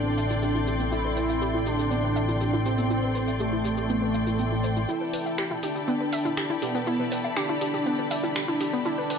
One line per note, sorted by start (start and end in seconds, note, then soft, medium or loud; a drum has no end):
0.00 4.86 A1 medium
0.00 4.85 C4 medium
0.00 0.82 D4 loud
0.00 4.85 E4 medium
0.00 4.85 A4 medium
0.00 4.89 A4 medium
0.00 4.89 D5 medium
0.00 4.85 E5 medium
0.00 9.19 G5 medium
0.00 4.89 C6 medium
0.06 0.13 B4 medium
0.18 0.26 E5 loud
0.18 shaker medium
0.30 0.42 E4 loud
0.30 shaker medium
0.42 0.47 G4 medium
0.42 shaker medium
0.55 0.63 E4 loud
0.67 0.72 G4 medium
0.67 shaker medium
0.80 0.88 B3 medium
0.80 shaker medium
0.92 1.68 E4 loud
0.92 1.00 E4 loud
0.92 shaker medium
1.05 1.12 B4 medium
1.17 1.29 B4 medium
1.17 shaker medium
1.29 1.37 E5 medium
1.29 shaker medium
1.42 1.50 G4 loud
1.42 shaker medium
1.54 1.62 E4 loud
1.66 2.56 D4 loud
1.66 1.75 G4 medium
1.66 shaker medium
1.79 1.87 G4 medium
1.79 shaker medium
1.91 1.99 B3 loud
1.91 shaker medium
2.04 2.12 B4 medium
2.16 2.24 E5 loud
2.16 shaker medium
2.29 2.40 E4 loud
2.29 shaker medium
2.41 2.46 G4 medium
2.41 shaker medium
2.54 2.61 E4 loud
2.66 3.30 C4 loud
2.66 2.71 G4 medium
2.66 shaker medium
2.78 2.86 B3 medium
2.78 shaker medium
2.90 2.99 E4 medium
2.90 shaker medium
3.03 3.11 B4 medium
3.15 3.27 B4 medium
3.15 shaker medium
3.28 3.36 E5 medium
3.28 shaker medium
3.40 4.79 A3 loud
3.40 3.48 G4 medium
3.40 shaker medium
3.53 3.60 E4 loud
3.65 3.73 G4 medium
3.65 shaker medium
3.77 3.85 G4 medium
3.77 shaker medium
3.90 3.98 B3 loud
3.90 shaker medium
4.02 4.10 B4 medium
4.14 4.26 E5 medium
4.14 shaker medium
4.27 4.35 E4 medium
4.27 shaker medium
4.39 4.47 B3 medium
4.39 shaker medium
4.52 4.63 E4 medium
4.64 4.69 C5 medium
4.64 shaker medium
4.76 4.81 E4 medium
4.76 shaker medium
4.89 9.19 B3 medium
4.89 5.65 E4 loud
4.89 9.19 E4 medium
4.89 4.97 E4 medium
4.89 9.19 E4 medium
4.89 9.19 G4 medium
4.89 9.19 D5 medium
4.89 9.19 E5 medium
4.89 shaker medium
4.97 9.19 A4 medium
4.97 9.19 D5 medium
5.01 5.09 B4 medium
5.13 5.25 B4 medium
5.13 open hi-hat loud
5.13 shaker medium
5.26 5.34 E5 medium
5.26 shaker medium
5.38 5.46 G4 loud
5.38 finger snap loud
5.38 shaker medium
5.51 5.59 E4 loud
5.51 mid tom medium
5.63 6.52 D4 loud
5.63 5.71 G4 medium
5.63 9.19 B5 medium
5.63 open hi-hat loud
5.63 shaker medium
5.76 5.84 G4 medium
5.76 shaker medium
5.88 5.96 B3 loud
5.88 shaker medium
6.01 6.08 B4 medium
6.13 6.21 E5 loud
6.13 open hi-hat loud
6.13 shaker medium
6.25 6.37 E4 loud
6.25 mid tom medium
6.25 shaker medium
6.37 6.42 G4 medium
6.37 finger snap loud
6.37 shaker medium
6.50 6.58 E4 loud
6.62 7.27 B3 loud
6.62 6.67 G4 medium
6.62 open hi-hat loud
6.62 shaker medium
6.75 6.83 B3 loud
6.75 shaker medium
6.87 6.95 E4 loud
6.87 shaker medium
7.00 7.08 B4 medium
7.00 mid tom medium
7.12 7.24 B4 medium
7.12 open hi-hat loud
7.12 shaker medium
7.24 7.32 E5 medium
7.24 shaker medium
7.37 8.76 D4 loud
7.37 7.45 G4 loud
7.37 finger snap loud
7.37 shaker medium
7.49 7.57 E4 loud
7.61 7.70 G4 medium
7.61 open hi-hat loud
7.61 shaker medium
7.74 7.82 G4 medium
7.74 mid tom medium
7.74 shaker medium
7.86 7.94 B3 loud
7.86 shaker medium
7.99 8.07 B4 medium
8.11 8.19 E5 loud
8.11 open hi-hat loud
8.11 shaker medium
8.24 8.35 E4 loud
8.24 shaker medium
8.36 8.41 G4 medium
8.36 finger snap loud
8.36 shaker medium
8.48 8.56 E4 loud
8.48 mid tom medium
8.61 8.65 G4 medium
8.61 open hi-hat loud
8.61 shaker medium
8.73 8.81 B3 loud
8.73 shaker medium
8.85 9.19 D4 loud
8.85 8.94 E4 loud
8.85 shaker medium
8.98 9.06 B4 medium
9.10 9.19 B4 medium
9.10 open hi-hat loud
9.10 shaker medium